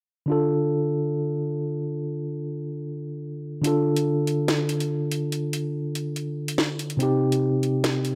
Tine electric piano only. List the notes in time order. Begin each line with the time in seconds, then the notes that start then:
0.26 D3 D4 F4
0.32 A4
3.62 D3 D4 F4
3.67 A4
6.97 C3 C4 D#4
7.03 G4